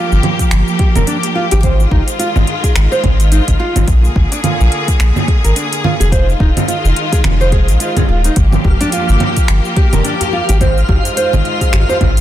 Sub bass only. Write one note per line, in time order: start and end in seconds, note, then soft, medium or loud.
0.12 0.20 G1 medium
0.52 0.63 G1 medium
0.96 1.04 F1 medium
1.52 1.86 G#1 loud
1.91 2.03 G#1 medium
2.36 2.44 G#1 loud
2.76 2.87 G#1 loud
3.04 3.40 G#1 medium
3.48 3.56 G#1 loud
3.76 3.84 G#1 medium
3.88 4.08 A#1 loud
4.16 4.27 G#1 medium
4.60 4.68 A#1 loud
5.00 5.11 A#1 medium
5.45 5.53 G#1 medium
6.00 6.34 F1 loud
6.40 6.51 D#1 medium
6.84 6.93 F1 medium
7.24 7.70 F1 loud
7.69 7.77 A#1 medium
8.09 8.29 D#1 loud
8.37 8.57 G1 loud
8.65 8.76 F1 medium
9.09 9.17 G1 loud
9.49 9.60 G1 loud
9.93 10.01 F1 medium
10.49 10.83 G#1 medium
10.89 11.00 G#1 medium
11.34 11.41 G#1 loud
11.73 11.84 G#1 loud
12.01 12.21 G#1 medium